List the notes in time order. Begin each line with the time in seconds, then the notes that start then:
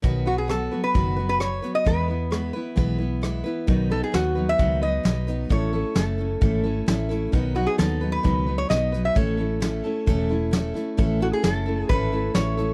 0.02 B1 B2 D#3 F#3 B3 F#4 B4, kick, closed hi-hat
0.26 F#3 B3 F#4 B4
0.38 G#4
0.48 F#3 B3 F#4 A4 B4, cross-stick, closed hi-hat
0.71 F#3 B3 F#4 B4
0.84 B4
0.94 F#1 B2 D#3 F#3 B3 F#4 B4, kick, closed hi-hat
1.16 F#3 B3 F#4 B4
1.29 B4
1.39 F#3 B3 F#4 B4 C#5, cross-stick, closed hi-hat
1.62 F#3 B3 F#4 B4, closed hi-hat
1.75 D#5
1.85 E2 E3 G#3 B3 E4 B4, kick, closed hi-hat
2.08 B3 E4 B4
2.31 G#3 B3 E4 B4, cross-stick, closed hi-hat
2.53 B3 E4 B4
2.76 B1 E3 G#3 B3 E4 B4, kick, closed hi-hat
2.98 B3 E4 B4
3.22 G#3 B3 E4 B4, cross-stick, closed hi-hat
3.44 B3 E4 B4, closed hi-hat
3.67 B1 B2 D#3 F#3 B3 D#4 B4, kick, closed hi-hat
3.90 F#3 B3 D#4 A4 B4
4.04 G#4
4.12 D#2 F#3 B3 D#4 F#4 B4, snare, closed hi-hat
4.35 F#3 B3 D#4 B4
4.49 E5
4.58 C#2 B2 D#3 F#3 B3 D#4 B4, kick, closed hi-hat
4.81 F#3 B3 D#4 B4 D#5
5.03 B1 F#3 B3 D#4 B4, snare, closed hi-hat
5.27 F#3 B3 D#4 B4, closed hi-hat
5.49 A1 A2 E3 A3 C#4 E4 A4 C#5, kick, closed hi-hat
5.73 A3 C#4 E4 A4
5.95 F#1 A3 C#4 E4 A4, snare, closed hi-hat
6.18 A3 C#4 E4 A4
6.41 G#1 A2 E3 A3 C#4 E4 A4, kick, closed hi-hat
6.63 A3 C#4 E4 A4
6.86 A1 A3 C#4 E4 A4, snare, closed hi-hat
7.09 A3 C#4 E4 A4, closed hi-hat
7.32 B1 B2 D#3 F#3 B3 D#4 B4, kick, closed hi-hat
7.55 F#3 B3 D#4 F#4 B4
7.67 G#4
7.78 D#2 F#3 B3 D#4 A4 B4, snare, closed hi-hat
8.01 F#3 B3 D#4 B4
8.12 B4
8.23 C#2 B2 D#3 F#3 B3 D#4 B4, kick, closed hi-hat
8.46 F#3 B3 D#4 B4
8.58 C#5
8.69 B1 F#3 B3 D#4 B4 D#5, snare, closed hi-hat
8.92 F#3 B3 D#4 B4, closed hi-hat
9.05 E5
9.15 A1 A2 E3 A3 C#4 E4 A4 C#5, kick, closed hi-hat
9.37 A3 C#4 E4 A4
9.60 A3 C#4 E4 A4, snare, closed hi-hat
9.84 A3 C#4 E4 A4
10.06 E1 A2 E3 A3 C#4 E4 A4, kick, closed hi-hat
10.29 A3 C#4 E4 A4
10.51 A3 C#4 E4 A4, snare, closed hi-hat
10.74 A3 C#4 E4 A4, closed hi-hat
10.97 A1 A2 E3 A3 C#4 E4 A4, kick, closed hi-hat
11.20 A3 C#4 E4 F#4 A4
11.33 G#4
11.43 F#1 A3 C#4 E4 A4, snare, closed hi-hat
11.66 A3 C#4 E4 A4
11.80 G#4
11.89 G#1 A2 E3 A3 C#4 E4 A4 B4, kick, closed hi-hat
12.12 A3 C#4 E4 A4
12.34 A1 A3 C#4 E4 A4 C#5, snare, closed hi-hat
12.57 A3 C#4 E4 A4, closed hi-hat